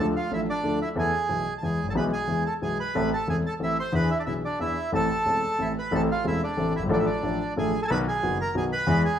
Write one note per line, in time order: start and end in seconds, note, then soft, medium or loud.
0.00 0.12 D2 medium
0.00 0.12 D3 medium
0.00 0.11 F3 medium
0.00 0.12 A3 medium
0.00 0.12 D4 medium
0.00 0.12 A4 medium
0.16 0.31 F4 medium
0.16 0.32 F5 medium
0.31 0.45 A1 medium
0.31 0.45 A2 medium
0.31 0.45 F3 soft
0.31 0.45 A3 soft
0.31 0.45 D4 soft
0.31 0.41 E4 medium
0.31 0.45 A4 medium
0.31 0.40 E5 medium
0.50 0.79 D4 medium
0.50 0.79 D5 loud
0.63 0.78 D2 medium
0.63 0.78 D3 medium
0.63 0.77 F3 soft
0.63 0.78 A3 soft
0.63 0.77 D4 soft
0.63 0.78 A4 soft
0.82 0.89 E4 medium
0.82 0.89 E5 medium
0.95 1.10 E2 medium
0.95 1.10 E3 medium
0.95 1.10 A3 medium
0.95 1.10 B3 medium
0.95 1.10 A4 medium
0.95 1.54 G#5 medium
1.00 1.54 G#4 medium
1.29 1.43 B1 medium
1.29 1.43 B2 medium
1.29 1.43 E3 soft
1.29 1.43 A3 soft
1.29 1.43 B3 soft
1.29 1.43 A4 soft
1.58 1.63 A5 medium
1.63 1.77 E2 medium
1.63 1.77 E3 medium
1.63 1.77 G#3 soft
1.63 1.77 B3 soft
1.63 1.77 G#4 medium
1.63 1.87 G#4 medium
1.63 1.86 G#5 medium
1.83 1.87 G#1 soft
1.88 1.92 A1 medium
1.88 1.93 A4 medium
1.88 1.93 A5 medium
1.92 1.96 A#1 medium
1.92 2.09 B1 medium
1.92 2.09 B2 medium
1.92 2.09 E3 medium
1.92 2.09 G#3 medium
1.92 2.09 B3 medium
1.92 2.09 G#4 medium
1.97 2.05 B4 medium
1.97 2.04 B5 medium
2.13 2.44 G#4 medium
2.13 2.43 G#5 medium
2.27 2.42 E2 medium
2.27 2.42 E3 medium
2.27 2.42 G#3 soft
2.27 2.42 B3 soft
2.27 2.42 G#4 medium
2.46 2.54 A4 medium
2.46 2.54 A5 medium
2.62 2.76 B1 medium
2.62 2.76 B2 medium
2.62 2.76 E3 soft
2.62 2.76 G#3 soft
2.62 2.76 B3 soft
2.62 2.76 G#4 medium
2.62 2.78 G#4 medium
2.62 2.78 G#5 medium
2.80 3.10 B4 medium
2.80 3.10 B5 medium
2.95 3.09 A1 medium
2.95 3.09 A2 medium
2.95 3.09 E3 medium
2.95 3.09 A3 medium
2.95 3.09 C4 medium
2.95 3.09 A4 medium
3.13 3.28 A4 medium
3.13 3.28 A5 medium
3.27 3.41 E1 medium
3.27 3.42 E2 medium
3.27 3.41 E3 soft
3.27 3.41 A3 soft
3.27 3.41 C4 soft
3.27 3.37 G#4 medium
3.27 3.42 A4 medium
3.27 3.37 G#5 medium
3.47 3.54 A4 medium
3.47 3.53 A5 medium
3.60 3.74 A1 medium
3.60 3.74 A2 medium
3.60 3.74 E3 medium
3.60 3.74 A3 soft
3.60 3.74 C4 soft
3.60 3.74 A4 medium
3.60 3.77 E5 medium
3.64 3.77 E4 medium
3.80 3.94 C5 medium
3.80 3.94 C6 loud
3.92 4.07 E2 medium
3.92 4.07 E3 medium
3.92 4.07 B3 medium
3.92 4.07 D4 medium
3.92 4.07 G#4 medium
3.92 4.10 B4 medium
3.92 4.11 B5 loud
4.11 4.18 E4 medium
4.11 4.18 E5 medium
4.19 4.23 D4 medium
4.19 4.23 D5 medium
4.26 4.40 B1 medium
4.26 4.40 B2 medium
4.26 4.40 E3 soft
4.26 4.40 B3 soft
4.26 4.40 D4 soft
4.26 4.34 E4 medium
4.26 4.41 G#4 medium
4.26 4.34 E5 medium
4.45 4.59 D4 medium
4.45 4.59 D5 medium
4.60 4.73 E2 medium
4.60 4.73 E3 medium
4.60 4.73 B3 soft
4.60 4.73 D4 soft
4.60 4.91 E4 medium
4.60 4.73 G#4 medium
4.60 4.90 E5 medium
4.92 5.06 A1 medium
4.92 5.06 A2 medium
4.92 5.06 E3 medium
4.92 5.06 A3 medium
4.92 5.06 C4 medium
4.92 5.06 A4 medium
4.92 5.73 A4 medium
4.92 5.72 A5 loud
5.25 5.39 E1 medium
5.25 5.39 E2 medium
5.25 5.39 E3 soft
5.25 5.39 A3 soft
5.25 5.39 C4 soft
5.25 5.40 A4 medium
5.58 5.73 A1 medium
5.58 5.73 A2 medium
5.58 5.72 E3 soft
5.58 5.72 A3 soft
5.58 5.73 C4 soft
5.58 5.68 E4 medium
5.58 5.73 A4 medium
5.58 5.68 E5 medium
5.78 5.92 B4 medium
5.78 5.94 B5 medium
5.91 6.06 A1 medium
5.91 6.06 A2 medium
5.91 6.05 E3 medium
5.91 6.06 A3 medium
5.91 6.05 C4 medium
5.91 6.06 A4 medium
5.91 6.01 A4 medium
5.95 6.02 A5 loud
6.11 6.25 F4 medium
6.11 6.25 F5 medium
6.24 6.38 E1 medium
6.24 6.38 E2 medium
6.24 6.38 E3 medium
6.24 6.38 A3 soft
6.24 6.39 C4 medium
6.24 6.41 E4 medium
6.24 6.39 A4 medium
6.24 6.42 E5 medium
6.44 6.73 D4 medium
6.44 6.73 D5 medium
6.57 6.71 A1 medium
6.57 6.71 A2 medium
6.57 6.71 E3 medium
6.57 6.71 A3 soft
6.57 6.71 C4 soft
6.57 6.72 A4 medium
6.76 6.83 F#1 medium
6.76 6.83 E4 medium
6.76 6.84 E5 medium
6.83 6.87 G1 medium
6.83 6.90 G#1 medium
6.89 7.04 A1 medium
6.89 7.04 A2 medium
6.89 7.04 F3 medium
6.89 7.04 A3 medium
6.89 7.04 D4 medium
6.89 6.98 D4 medium
6.89 7.04 A4 medium
6.89 6.98 D5 medium
6.99 7.06 E5 medium
7.06 7.54 D4 medium
7.06 7.54 D5 medium
7.23 7.37 A1 medium
7.23 7.37 A2 medium
7.23 7.37 F3 soft
7.23 7.37 A3 soft
7.23 7.37 D4 soft
7.23 7.37 A4 medium
7.56 7.70 A1 medium
7.56 7.70 A2 medium
7.56 7.70 F3 soft
7.56 7.71 A3 medium
7.56 7.70 D4 medium
7.56 7.80 G#4 medium
7.56 7.71 A4 medium
7.56 7.80 G#5 medium
7.85 7.90 A4 medium
7.85 7.87 G#5 medium
7.85 7.90 A5 loud
7.90 8.04 B1 loud
7.90 8.04 B2 loud
7.90 8.03 D#3 medium
7.90 8.04 F#3 medium
7.90 8.04 B3 medium
7.90 8.04 F#4 medium
7.90 7.98 B4 medium
7.90 7.98 B5 loud
8.08 8.38 G#4 medium
8.08 8.38 G#5 medium
8.22 8.36 F#1 medium
8.22 8.36 F#2 medium
8.22 8.36 D#3 medium
8.22 8.36 F#3 medium
8.22 8.36 B3 medium
8.22 8.36 F#4 medium
8.41 8.55 A#4 medium
8.41 8.55 A#5 medium
8.55 8.69 B1 medium
8.55 8.69 B2 medium
8.55 8.69 D#3 medium
8.55 8.69 F#3 medium
8.55 8.69 B3 medium
8.55 8.69 F#4 medium
8.55 8.64 G#4 medium
8.55 8.64 G#5 medium
8.73 9.03 B4 medium
8.73 9.03 B5 loud
8.87 9.01 E2 medium
8.87 9.02 E3 medium
8.87 9.02 G#3 medium
8.87 9.02 B3 medium
8.87 9.02 G#4 medium
9.05 9.19 G#4 medium
9.05 9.19 G#5 medium